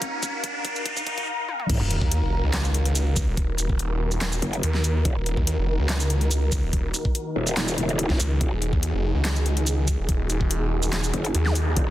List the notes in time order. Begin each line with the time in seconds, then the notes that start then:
Already playing: D#2 D#3 A#3 D#4 F#4 A#4 F5 A#5, riser
0.02 kick, closed hi-hat
0.23 kick, closed hi-hat, shaker
0.44 kick, closed hi-hat
0.65 kick, open hi-hat
0.76 shaker
0.86 kick, closed hi-hat
0.97 kick, shaker
1.07 kick, closed hi-hat
1.18 kick, closed hi-hat
1.49 high tom
1.60 mid tom
1.69 D#1 D#3 D#4 F#4 A#4, kick, closed hi-hat, crash, sub drop
1.81 D#1
1.91 closed hi-hat
2.02 D#2, kick
2.11 closed hi-hat
2.23 F1
2.43 C#2
2.53 snare, clap, closed hi-hat
2.64 shaker
2.74 closed hi-hat
2.85 closed hi-hat
2.95 closed hi-hat, shaker
3.16 kick, open hi-hat, shaker
3.27 D#1
3.37 kick, closed hi-hat
3.58 D#1, closed hi-hat, shaker
3.69 kick
3.79 closed hi-hat
4.11 shaker
4.21 snare, clap, closed hi-hat
4.32 shaker
4.42 F#1, closed hi-hat
4.53 closed hi-hat
4.63 D#2, closed hi-hat
4.74 snare
4.84 open hi-hat, shaker
5.05 D#1, kick, closed hi-hat
5.16 D#1
5.26 closed hi-hat
5.37 D#2, kick
5.47 closed hi-hat
5.58 F1
5.79 C#2
5.89 snare, clap, closed hi-hat
6.00 shaker
6.10 closed hi-hat
6.21 closed hi-hat
6.31 closed hi-hat, shaker
6.52 kick, open hi-hat, shaker
6.63 D#1
6.73 kick, closed hi-hat
6.94 closed hi-hat, shaker
7.05 kick
7.15 closed hi-hat
7.36 D#1
7.47 shaker
7.57 snare, clap, closed hi-hat
7.68 shaker
7.78 D#1, closed hi-hat
7.89 closed hi-hat
7.99 closed hi-hat
8.10 kick, snare
8.20 C#2, open hi-hat, shaker
8.41 D#1 G#4, kick, closed hi-hat
8.52 D#1
8.62 closed hi-hat
8.73 D#2, kick
8.83 closed hi-hat
8.94 F1
9.15 C#2
9.25 snare, clap, closed hi-hat
9.36 shaker
9.46 closed hi-hat
9.57 closed hi-hat
9.67 closed hi-hat, shaker
9.88 kick, open hi-hat, shaker
9.99 D#1
10.09 kick, closed hi-hat
10.30 D#1, closed hi-hat, shaker
10.41 kick
10.51 closed hi-hat
10.83 shaker
10.93 snare, clap, closed hi-hat
11.04 shaker
11.14 F#1, closed hi-hat
11.25 closed hi-hat
11.35 D#2, closed hi-hat
11.46 snare, zap
11.55 open hi-hat, shaker
11.76 D#1, kick, closed hi-hat